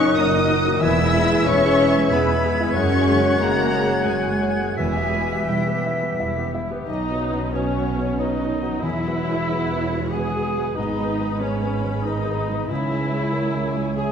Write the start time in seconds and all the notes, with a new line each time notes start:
Already playing: F#1 F#2 A#2 F#3 C#4 D#4 F#4 A#4 C#5 D#5 C#6 F#6
0.04 F#3 A#3 F#4
0.17 F#1 F#3 D#4 F#4 A#4 D#5 D#6
0.34 F#3 A#3 F#4
0.50 F#3 D#4 A#4
0.65 A#3 F#4
0.81 E1 E2 B3 E4 B4 E5 E6 G#6
0.98 G#3 G#4
1.15 G#3 B3 E4
1.31 G#3 G#4
1.47 E1 G#3 B3 C#4 E4 C#5 C#6
1.63 G#3 G#4
1.80 B3 E4 G#4
1.96 G#3 G#4
2.11 E1 B3 E4 G#4 B4 B5
2.29 G#3 G#4
2.44 B3 E4 G#4
2.60 G#3 E4 G#4
2.74 F#1 F#2 F#3 C#4 F#4 G#4 C#5 F#5 C#6
2.91 G#3 F#4 C#5
3.07 F#3 G#3 G#4
3.24 G#3 F#4 C#5
3.40 F#1 F#3 A#3 G#4 A#4 A#5
3.57 G#3 F#4 C#5
3.73 F#3 G#4 C#5
3.91 G#3 F#4
4.06 F#1 F#3 G#3 G#4 C#5 G#5
4.25 G#3 F#4
4.42 F#3 G#4 C#5
4.60 G#3 F#4 G#4
4.76 E1 E2 G3 G#3 B3 E4 G#4 B4 E5 G#5 B6
4.95 B3 G4 E5
5.13 G3 B3 E4
5.31 B3 G4 E5
5.48 E1 G3 E4 G4 G5
5.67 B3 G4 B4
5.84 G3 E4 E5
6.02 B3 G4
6.19 E1 G3 E4 E5
6.36 B3 G4
6.53 G3 E4 E5
6.71 B3 G4 B4
6.87 B1 B2 B3 C#4 D#4 C#5 D#5
7.05 B3
7.10 B3 F#4 C#5
7.21 F#4 B4
7.33 B3 F#4 C#5
7.37 C#5
7.53 B3 C#4 F#4 C#5
7.71 F#5
7.77 B3 F#4 C#5
7.86 C#6
7.98 B3 F#4 C#5
8.19 B3 D#4 F#4 B4 C#5 D#5
8.36 F#4
8.40 B3 F#4 C#5
8.50 B3 A#4
8.62 B3 F#4 C#5
8.68 F#3
8.83 E1 E2 G#3 B3 E4 G#4 E5 F#5
9.01 G#3
9.07 G#3 F#4 B4
9.17 F#4 C#5
9.28 G#3 F#4 B4
9.50 G#3 F#4 G#4 B4
9.65 F#5
9.72 G#3 F#4 B4
9.82 C#5
9.93 G#3 F#4 G#4 B4
10.13 G#3 F#4 G#4 B4 G#5
10.29 F#4
10.35 G#3 F#4 B4
10.45 G#3
10.57 G#3 F#4 B4
10.61 B2
10.76 G#1 G#2 D#4 D#5 B5
10.93 G#3
11.00 G#3 G#4 B4
11.09 G#4
11.19 G#3 G#4 B4
11.24 D#5
11.40 G#3 C#4 G#4 B4 C#5
11.57 G#5
11.62 G#3 G#4 B4
11.84 G#3 G#4 B4
11.89 G#4
12.04 G#3 D#4 G#4 A#4 B4 D#5
12.21 G#4
12.27 G#3 G#4 B4
12.37 G#3 B4
12.49 G#3 B4
12.53 D#3
12.68 C#2 C#3 G#3 C#4 E4 C#5 E5 G#5
12.85 G#3
12.90 G#3 G#4 C#5
13.01 G#4 B4
13.12 G#3 G#4 C#5
13.16 C#5
13.32 G#3 G#4 A#4 C#5
13.48 G#5
13.55 G#3 G#4 C#5
13.65 G#4 C#6
13.76 G#3 G#4 C#5
13.81 G#4
13.97 G#3 G#4 C#5 E5 G#5